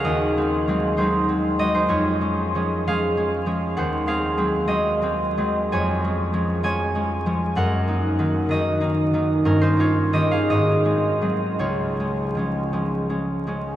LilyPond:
<<
  \new Staff \with { instrumentName = "Harp" } { \time 6/8 \key des \major \tempo 4. = 64 <ges' aes' ees'' f''>4. <ees' c''>4 <ges' ees''>16 <ees' c''>16 | <f' des''>4. <aes' f''>4. | <c'' ges''>8 <aes' f''>4 <ges' ees''>4. | <des'' aes''>4. <des'' aes''>4. |
<bes' ges''>4. <ges' ees''>4. | <des' bes'>16 <ees' c''>16 <f' des''>8 <g' ees''>16 <aes' f''>16 <ges' ees''>4. | <f' des''>2. | }
  \new Staff \with { instrumentName = "Harp" } { \clef bass \time 6/8 \key des \major <ees, aes>8 <aes c'>8 <ges aes c'>8 <ges aes c'>8 <aes c'>8 <ges aes c'>8 | f,8 <aes des'>8 <f aes des'>8 <f aes des'>8 <aes des'>8 <f aes des'>8 | ees,8 <aes c'>8 <ges aes c'>8 <ges aes c'>8 <aes c'>8 <ges aes c'>8 | f,8 <aes des'>8 <f aes des'>8 <f aes des'>8 <aes des'>8 <f aes des'>8 |
ges,8 <bes ees'>8 <ees bes ees'>8 <ees bes ees'>8 <bes ees'>8 <ees bes ees'>8 | g,8 <bes ees'>8 <ees bes ees'>8 aes,8 <aes c'>8 <ges aes c'>8 | des,8 <aes des'>8 <f aes des'>8 <f aes des'>8 <aes des'>8 <f aes des'>8 | }
>>